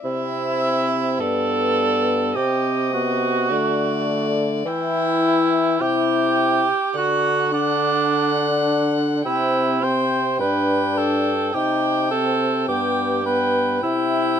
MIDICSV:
0, 0, Header, 1, 5, 480
1, 0, Start_track
1, 0, Tempo, 574163
1, 37, Time_signature, 4, 2, 24, 8
1, 12037, End_track
2, 0, Start_track
2, 0, Title_t, "Violin"
2, 0, Program_c, 0, 40
2, 29, Note_on_c, 0, 76, 59
2, 1006, Note_on_c, 0, 74, 59
2, 1018, Note_off_c, 0, 76, 0
2, 1966, Note_off_c, 0, 74, 0
2, 1971, Note_on_c, 0, 75, 60
2, 2942, Note_on_c, 0, 74, 61
2, 2955, Note_off_c, 0, 75, 0
2, 3898, Note_on_c, 0, 79, 64
2, 3911, Note_off_c, 0, 74, 0
2, 4847, Note_off_c, 0, 79, 0
2, 4852, Note_on_c, 0, 79, 66
2, 5793, Note_off_c, 0, 79, 0
2, 5814, Note_on_c, 0, 78, 63
2, 6284, Note_off_c, 0, 78, 0
2, 6296, Note_on_c, 0, 78, 72
2, 7705, Note_off_c, 0, 78, 0
2, 7730, Note_on_c, 0, 79, 62
2, 8201, Note_off_c, 0, 79, 0
2, 8210, Note_on_c, 0, 79, 62
2, 8680, Note_off_c, 0, 79, 0
2, 8691, Note_on_c, 0, 79, 63
2, 9628, Note_off_c, 0, 79, 0
2, 9642, Note_on_c, 0, 79, 64
2, 10583, Note_off_c, 0, 79, 0
2, 10599, Note_on_c, 0, 79, 59
2, 11070, Note_off_c, 0, 79, 0
2, 11075, Note_on_c, 0, 79, 58
2, 11548, Note_off_c, 0, 79, 0
2, 11555, Note_on_c, 0, 79, 61
2, 12037, Note_off_c, 0, 79, 0
2, 12037, End_track
3, 0, Start_track
3, 0, Title_t, "Cor anglais"
3, 0, Program_c, 1, 69
3, 34, Note_on_c, 1, 64, 80
3, 971, Note_off_c, 1, 64, 0
3, 1001, Note_on_c, 1, 69, 101
3, 1967, Note_on_c, 1, 67, 74
3, 1980, Note_off_c, 1, 69, 0
3, 2448, Note_off_c, 1, 67, 0
3, 2453, Note_on_c, 1, 66, 90
3, 3629, Note_off_c, 1, 66, 0
3, 3900, Note_on_c, 1, 64, 89
3, 4861, Note_on_c, 1, 67, 100
3, 4874, Note_off_c, 1, 64, 0
3, 5817, Note_off_c, 1, 67, 0
3, 5829, Note_on_c, 1, 66, 89
3, 6292, Note_off_c, 1, 66, 0
3, 6298, Note_on_c, 1, 62, 93
3, 7472, Note_off_c, 1, 62, 0
3, 7739, Note_on_c, 1, 64, 86
3, 8223, Note_on_c, 1, 72, 100
3, 8235, Note_off_c, 1, 64, 0
3, 8689, Note_off_c, 1, 72, 0
3, 8694, Note_on_c, 1, 71, 90
3, 9175, Note_on_c, 1, 69, 91
3, 9188, Note_off_c, 1, 71, 0
3, 9645, Note_on_c, 1, 67, 87
3, 9657, Note_off_c, 1, 69, 0
3, 10118, Note_off_c, 1, 67, 0
3, 10123, Note_on_c, 1, 69, 94
3, 10593, Note_off_c, 1, 69, 0
3, 10602, Note_on_c, 1, 67, 78
3, 11071, Note_off_c, 1, 67, 0
3, 11085, Note_on_c, 1, 71, 89
3, 11553, Note_off_c, 1, 71, 0
3, 11561, Note_on_c, 1, 64, 88
3, 12037, Note_off_c, 1, 64, 0
3, 12037, End_track
4, 0, Start_track
4, 0, Title_t, "Trombone"
4, 0, Program_c, 2, 57
4, 34, Note_on_c, 2, 60, 59
4, 1009, Note_on_c, 2, 59, 63
4, 1021, Note_off_c, 2, 60, 0
4, 1972, Note_on_c, 2, 60, 59
4, 1985, Note_off_c, 2, 59, 0
4, 2446, Note_off_c, 2, 60, 0
4, 2451, Note_on_c, 2, 59, 57
4, 2941, Note_on_c, 2, 57, 62
4, 2953, Note_off_c, 2, 59, 0
4, 3889, Note_off_c, 2, 57, 0
4, 3894, Note_on_c, 2, 64, 63
4, 4836, Note_off_c, 2, 64, 0
4, 4855, Note_on_c, 2, 64, 63
4, 5567, Note_off_c, 2, 64, 0
4, 5808, Note_on_c, 2, 62, 66
4, 6258, Note_off_c, 2, 62, 0
4, 6294, Note_on_c, 2, 62, 68
4, 7704, Note_off_c, 2, 62, 0
4, 7735, Note_on_c, 2, 60, 65
4, 8203, Note_off_c, 2, 60, 0
4, 8219, Note_on_c, 2, 60, 63
4, 8702, Note_on_c, 2, 62, 70
4, 8714, Note_off_c, 2, 60, 0
4, 9648, Note_off_c, 2, 62, 0
4, 9653, Note_on_c, 2, 63, 60
4, 10119, Note_off_c, 2, 63, 0
4, 10138, Note_on_c, 2, 60, 57
4, 10613, Note_on_c, 2, 59, 58
4, 10626, Note_off_c, 2, 60, 0
4, 11076, Note_off_c, 2, 59, 0
4, 11081, Note_on_c, 2, 59, 58
4, 11551, Note_off_c, 2, 59, 0
4, 11562, Note_on_c, 2, 64, 64
4, 12037, Note_off_c, 2, 64, 0
4, 12037, End_track
5, 0, Start_track
5, 0, Title_t, "Bassoon"
5, 0, Program_c, 3, 70
5, 38, Note_on_c, 3, 48, 60
5, 1006, Note_on_c, 3, 43, 58
5, 1018, Note_off_c, 3, 48, 0
5, 1972, Note_on_c, 3, 48, 61
5, 1984, Note_off_c, 3, 43, 0
5, 2936, Note_on_c, 3, 50, 64
5, 2948, Note_off_c, 3, 48, 0
5, 3886, Note_off_c, 3, 50, 0
5, 3891, Note_on_c, 3, 52, 65
5, 4834, Note_off_c, 3, 52, 0
5, 4854, Note_on_c, 3, 48, 62
5, 5566, Note_off_c, 3, 48, 0
5, 5807, Note_on_c, 3, 50, 74
5, 7697, Note_off_c, 3, 50, 0
5, 7733, Note_on_c, 3, 48, 71
5, 8693, Note_on_c, 3, 43, 64
5, 8706, Note_off_c, 3, 48, 0
5, 9645, Note_off_c, 3, 43, 0
5, 9650, Note_on_c, 3, 48, 69
5, 10587, Note_off_c, 3, 48, 0
5, 10605, Note_on_c, 3, 43, 64
5, 11542, Note_off_c, 3, 43, 0
5, 11563, Note_on_c, 3, 48, 59
5, 12037, Note_off_c, 3, 48, 0
5, 12037, End_track
0, 0, End_of_file